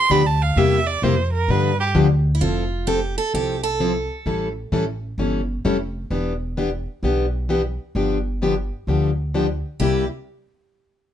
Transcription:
Already playing: C6
0.10 D2 D3 F3 B3 D4 G4 B5
0.27 A5
0.42 F5
0.56 E2 C3 G3 A#3 E4 G4 E5
0.87 D5
1.02 F2 C3 G3 A#3 E4 G4 C5
1.33 A#4
1.48 G2 D3 F3 B3 D4 G4 B4
1.80 G4
1.95 D2 D3 F3 B3 D4 G4
2.35 E4
2.41 F1 F3 C4 E4 F4 A4
2.87 F3 C4 E4 G4 A4
3.18 A4
3.33 C2 F3 C4 E4 G4 A4
3.63 A4
3.80 F3 C4 E4 A4
4.26 A1 E3 G3 C#4 E4 A4
4.72 A1 E3 G3 C#4 E4 A4
5.18 G1 E3 G3 C#4 E4 A4
5.65 F1 E3 G3 C#4 E4 A4
6.10 E1 E3 B3 D4 G4
6.57 E3 B3 D4 G4
7.03 B1 E3 B3 D4 G4
7.49 E3 B3 D4 G4
7.95 G1 D3 F3 B3 D4 G4
8.42 D3 F3 B3 D4 G4
8.87 D2 D3 F3 B3 D4 G4
9.34 D3 F3 B3 D4 G4
9.80 C2 C3 G3 A#3 E4 G4

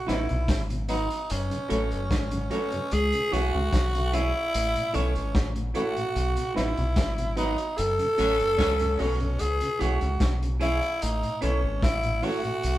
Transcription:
0.07 A1 F#3 B3 D#4 E4 F#4 B4, snare, closed hi-hat
0.29 B1 B2, closed hi-hat
0.48 G#1, kick, snare, closed hi-hat
0.70 B2, closed hi-hat
0.89 F#3 B3 D#4 F#4 B4, closed hi-hat
1.10 closed hi-hat
1.30 F#1 C#4, closed hi-hat
1.50 F#2 C#3, closed hi-hat
1.69 A1 F#3 A3 C#4 F#4 A4 C#5, closed hi-hat
1.91 F#1, closed hi-hat
2.11 G#1, kick, snare, closed hi-hat
2.31 F#2 C#3, closed hi-hat
2.50 F#3 A3 C#4 F#4 A4 C#5, closed hi-hat
2.72 F#2 C#3, closed hi-hat
2.91 C#2 G#4, closed hi-hat
3.12 C#3, closed hi-hat
3.31 B1 E3 G#3 C#4 E4 F#4 G#4 C#5, closed hi-hat
3.55 C#2 C#3
3.73 B1, kick, snare, closed hi-hat
3.94 C#3, closed hi-hat
4.13 E3 G#3 C#4 E4 G#4 C#5, closed hi-hat
4.54 A1, closed hi-hat
4.75 A2, closed hi-hat
4.93 B1 E3 A3 C#4 E4 A4 C#5, closed hi-hat
5.15 G#1, closed hi-hat
5.35 A1, kick, snare, closed hi-hat
5.56 A2, closed hi-hat
5.74 E3 A3 C#4 E4 F#4 A4 C#5, closed hi-hat
5.97 A2, closed hi-hat
6.16 B1, closed hi-hat
6.37 B2, closed hi-hat
6.55 A1 F#3 B3 D#4 E4 F#4 B4, snare, closed hi-hat
6.77 B1 B2, closed hi-hat
6.96 G#1, kick, snare, closed hi-hat
7.18 B2, closed hi-hat
7.36 B2 D#3 F#3 B3 D#4 F#4 B4, closed hi-hat
7.58 closed hi-hat
7.78 F#1 A4, closed hi-hat
7.99 F#2 C#3, closed hi-hat
8.17 A1 A2 C#3 F#3 A3 C#4 F#4 A4 C#5, closed hi-hat
8.40 F#1, closed hi-hat
8.57 C#2 A2 C#3 F#3 C#4, kick, snare, closed hi-hat
8.79 F#2 C#3, closed hi-hat
8.98 B1 F#3 A3 C#4 F#4 A4 C#5, open hi-hat
9.20 F#2 C#3, closed hi-hat
9.39 C#2 G#4, closed hi-hat
9.61 C#3, closed hi-hat
9.79 B1 E3 G#3 C#4 E4 F#4 G#4 C#5, closed hi-hat
10.01 C#2 C#3, closed hi-hat
10.20 B1, kick, snare, closed hi-hat
10.42 C#3, closed hi-hat
10.60 E3 G#3 C#4 E4 G#4 C#5, closed hi-hat
10.82 closed hi-hat
11.02 A1 D#4, closed hi-hat
11.23 A2, closed hi-hat
11.41 B1 E3 A3 C#4 E4 A4 C#5, closed hi-hat
11.64 G#1
11.82 A1 E4, kick, snare, closed hi-hat
12.03 A2, closed hi-hat
12.22 E3 A3 C#4 E4 F#4 A4 C#5, open hi-hat
12.44 A2, closed hi-hat
12.63 B1, closed hi-hat

